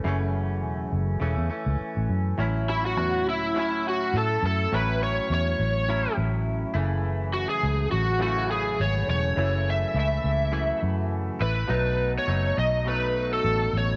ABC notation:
X:1
M:4/4
L:1/16
Q:"Swing 16ths" 1/4=103
K:Alyd
V:1 name="Electric slide guitar"
z16 | z2 E F3 E2 E2 F2 A2 A2 | B2 c2 c6 z6 | z2 F G3 F2 F2 G2 c2 c2- |
c2 e2 e6 z4 B2- | B3 c3 d2 B3 A3 c2 |]
V:2 name="Clean electric guitar" clef=bass
[F,,C,E,A,C]8 [C,E,A,C]2 [E,A,C]6 | [A,,F,CE]8 [A,,F,CE]8 | [A,,F,CE]8 [A,,F,CE]6 [F,,C,E,A,E]2- | [F,,C,E,A,E]8 [F,,C,E,A,E]8 |
[F,,C,E,A,E]4 [C,E,A,E]4 [F,,C,E,A,E]6 [E,A,E]2 | [B,,F,A,D]4 [B,,F,A,D]4 [B,,F,A,D]8 |]
V:3 name="Fingered electric bass" clef=bass
F,,,4 E,,,2 F,,,2 E,,, E,, z C,, z A,,, F,,2 | A,,,4 E,,2 C,,6 A,,2 F,,2 | A,,,4 E,,2 A,,,4 A,,,4 F,,,2- | F,,,4 C,,2 A,,,6 G,,,2 E,,,2 |
F,,,4 C,,2 C,,4 F,,4 A,,,2 | B,,,4 F,,,2 B,,,6 A,,,2 A,,,2 |]